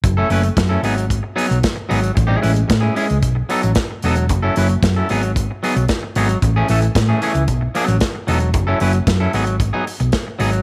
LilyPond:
<<
  \new Staff \with { instrumentName = "Clean electric guitar" } { \time 4/4 \key gis \phrygian \tempo 4 = 113 r16 <a cis' e' a'>16 <a cis' e' b'>16 r8 <a cis' e' a'>16 <fis b dis' gis'>8 r8 <fis b dis' gis'>8 r8 <fis b dis' gis'>8 | r16 <gis cis' e' gis'>16 <gis cis' e' b'>16 r8 <gis cis' e' gis'>16 <gis cis' e' gis'>8 r8 <fis b dis' a'>8 r8 <fis b dis' a'>8 | r16 <fis cis' e' a'>16 <fis cis' e' b'>16 r8 <fis cis' e' a'>16 <fis b dis' gis'>8 r8 <fis b dis' gis'>8 r8 <fis b dis' gis'>8 | r16 <e a cis' gis'>16 <e a cis' a'>16 r8 <e a cis' gis'>16 <e a cis' gis'>8 r8 <fis b dis' a'>8 r8 <fis b dis' a'>8 |
r16 <fis cis' e' a'>16 <fis cis' e' b'>16 r8 <fis cis' e' a'>16 <fis b dis' gis'>8 r16 <fis b dis' gis'>8 r8. <fis b dis' gis'>8 | }
  \new Staff \with { instrumentName = "Fingered electric bass" } { \clef bass \time 4/4 \key gis \phrygian fis,,8 fis,,8 fis,8 gis,,4 r16 b,,16 r8 gis,,8 | a,,8 a,,8 a,8 r16 cis,16 b,,8 r16 a,,16 r8 e,,8 | fis,,8 fis,,8 fis,8 gis,,4 r16 b,,16 r8 gis,,8 | a,,8 a,,8 a,8 r16 cis,16 b,,8 r16 a,,16 r8 e,,8 |
fis,,8 fis,,8 fis,8 gis,,4 r16 b,,16 r8 gis,,8 | }
  \new DrumStaff \with { instrumentName = "Drums" } \drummode { \time 4/4 <hh bd>8 hho16 hh16 <hh bd sn>8 hho16 hh16 <hh bd>8 hho16 hh16 <hh bd sn>8 hho16 hh16 | <hh bd>8 hho16 hh16 <hh bd sn>8 hho16 hh16 <hh bd>8 hho16 hh16 <hh bd sn>8 hho16 hh16 | <hh bd>8 hho16 hh16 <hh bd sn>8 hho16 hh16 <hh bd>8 hho16 hh16 <hh bd sn>8 hho16 hh16 | <hh bd>8 hho16 hh16 <hh bd sn>8 hho16 hh16 <hh bd>8 hho16 hh16 <hh bd sn>8 hho16 hh16 |
<hh bd>8 hho16 hh16 <hh bd sn>8 hho16 hh16 <hh bd>8 hho16 hh16 <hh bd sn>8 hho16 hh16 | }
>>